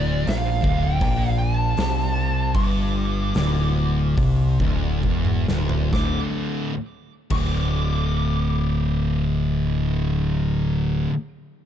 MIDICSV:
0, 0, Header, 1, 5, 480
1, 0, Start_track
1, 0, Tempo, 758534
1, 1613, Time_signature, 4, 2, 24, 8
1, 1614, Tempo, 813008
1, 2574, Tempo, 877193
1, 3534, Tempo, 917431
1, 6528, End_track
2, 0, Start_track
2, 0, Title_t, "Lead electric guitar"
2, 0, Program_c, 0, 29
2, 0, Note_on_c, 0, 74, 81
2, 179, Note_off_c, 0, 74, 0
2, 182, Note_on_c, 0, 77, 80
2, 525, Note_on_c, 0, 79, 95
2, 539, Note_off_c, 0, 77, 0
2, 873, Note_off_c, 0, 79, 0
2, 876, Note_on_c, 0, 80, 99
2, 983, Note_off_c, 0, 80, 0
2, 983, Note_on_c, 0, 81, 99
2, 1612, Note_on_c, 0, 86, 98
2, 1632, Note_off_c, 0, 81, 0
2, 2695, Note_off_c, 0, 86, 0
2, 2695, Note_on_c, 0, 84, 98
2, 3263, Note_off_c, 0, 84, 0
2, 3537, Note_on_c, 0, 86, 74
2, 3669, Note_off_c, 0, 86, 0
2, 4259, Note_on_c, 0, 86, 81
2, 5853, Note_off_c, 0, 86, 0
2, 6528, End_track
3, 0, Start_track
3, 0, Title_t, "Distorted electric guitar"
3, 0, Program_c, 1, 30
3, 0, Note_on_c, 1, 38, 113
3, 162, Note_off_c, 1, 38, 0
3, 164, Note_on_c, 1, 46, 96
3, 392, Note_off_c, 1, 46, 0
3, 395, Note_on_c, 1, 38, 94
3, 629, Note_off_c, 1, 38, 0
3, 637, Note_on_c, 1, 46, 100
3, 1114, Note_off_c, 1, 46, 0
3, 1114, Note_on_c, 1, 48, 97
3, 1602, Note_off_c, 1, 48, 0
3, 1611, Note_on_c, 1, 43, 108
3, 2077, Note_off_c, 1, 43, 0
3, 2085, Note_on_c, 1, 38, 96
3, 2565, Note_off_c, 1, 38, 0
3, 2572, Note_on_c, 1, 48, 93
3, 2798, Note_off_c, 1, 48, 0
3, 2808, Note_on_c, 1, 38, 92
3, 3037, Note_off_c, 1, 38, 0
3, 3045, Note_on_c, 1, 40, 97
3, 3279, Note_off_c, 1, 40, 0
3, 3289, Note_on_c, 1, 38, 99
3, 3526, Note_off_c, 1, 38, 0
3, 3532, Note_on_c, 1, 38, 89
3, 3545, Note_on_c, 1, 45, 87
3, 3552, Note_on_c, 1, 50, 106
3, 3948, Note_off_c, 1, 38, 0
3, 3948, Note_off_c, 1, 45, 0
3, 3948, Note_off_c, 1, 50, 0
3, 4253, Note_on_c, 1, 38, 88
3, 4265, Note_on_c, 1, 45, 86
3, 4271, Note_on_c, 1, 50, 96
3, 6237, Note_off_c, 1, 38, 0
3, 6244, Note_off_c, 1, 45, 0
3, 6247, Note_off_c, 1, 50, 0
3, 6528, End_track
4, 0, Start_track
4, 0, Title_t, "Picked electric bass"
4, 0, Program_c, 2, 34
4, 0, Note_on_c, 2, 26, 90
4, 145, Note_off_c, 2, 26, 0
4, 171, Note_on_c, 2, 34, 92
4, 389, Note_off_c, 2, 34, 0
4, 406, Note_on_c, 2, 26, 96
4, 625, Note_off_c, 2, 26, 0
4, 641, Note_on_c, 2, 34, 109
4, 1096, Note_off_c, 2, 34, 0
4, 1123, Note_on_c, 2, 36, 92
4, 1589, Note_off_c, 2, 36, 0
4, 1615, Note_on_c, 2, 31, 92
4, 2062, Note_off_c, 2, 31, 0
4, 2086, Note_on_c, 2, 26, 91
4, 2549, Note_off_c, 2, 26, 0
4, 2571, Note_on_c, 2, 36, 97
4, 2788, Note_off_c, 2, 36, 0
4, 2809, Note_on_c, 2, 26, 91
4, 3028, Note_off_c, 2, 26, 0
4, 3041, Note_on_c, 2, 28, 91
4, 3267, Note_off_c, 2, 28, 0
4, 3290, Note_on_c, 2, 26, 99
4, 3518, Note_off_c, 2, 26, 0
4, 3535, Note_on_c, 2, 26, 82
4, 3668, Note_off_c, 2, 26, 0
4, 4253, Note_on_c, 2, 26, 84
4, 6217, Note_off_c, 2, 26, 0
4, 6528, End_track
5, 0, Start_track
5, 0, Title_t, "Drums"
5, 173, Note_on_c, 9, 46, 60
5, 183, Note_on_c, 9, 38, 116
5, 236, Note_off_c, 9, 46, 0
5, 246, Note_off_c, 9, 38, 0
5, 405, Note_on_c, 9, 36, 103
5, 468, Note_off_c, 9, 36, 0
5, 639, Note_on_c, 9, 46, 65
5, 641, Note_on_c, 9, 36, 115
5, 702, Note_off_c, 9, 46, 0
5, 704, Note_off_c, 9, 36, 0
5, 1121, Note_on_c, 9, 46, 63
5, 1131, Note_on_c, 9, 38, 115
5, 1184, Note_off_c, 9, 46, 0
5, 1194, Note_off_c, 9, 38, 0
5, 1611, Note_on_c, 9, 36, 104
5, 1611, Note_on_c, 9, 46, 56
5, 1670, Note_off_c, 9, 46, 0
5, 1671, Note_off_c, 9, 36, 0
5, 2082, Note_on_c, 9, 46, 54
5, 2091, Note_on_c, 9, 38, 114
5, 2141, Note_off_c, 9, 46, 0
5, 2150, Note_off_c, 9, 38, 0
5, 2573, Note_on_c, 9, 36, 115
5, 2574, Note_on_c, 9, 46, 59
5, 2628, Note_off_c, 9, 36, 0
5, 2629, Note_off_c, 9, 46, 0
5, 2806, Note_on_c, 9, 36, 92
5, 2860, Note_off_c, 9, 36, 0
5, 3043, Note_on_c, 9, 36, 64
5, 3097, Note_off_c, 9, 36, 0
5, 3161, Note_on_c, 9, 47, 60
5, 3215, Note_off_c, 9, 47, 0
5, 3289, Note_on_c, 9, 38, 87
5, 3344, Note_off_c, 9, 38, 0
5, 3404, Note_on_c, 9, 43, 85
5, 3459, Note_off_c, 9, 43, 0
5, 3532, Note_on_c, 9, 36, 95
5, 3536, Note_on_c, 9, 38, 77
5, 3585, Note_off_c, 9, 36, 0
5, 3588, Note_off_c, 9, 38, 0
5, 4251, Note_on_c, 9, 49, 84
5, 4254, Note_on_c, 9, 36, 92
5, 4304, Note_off_c, 9, 49, 0
5, 4307, Note_off_c, 9, 36, 0
5, 6528, End_track
0, 0, End_of_file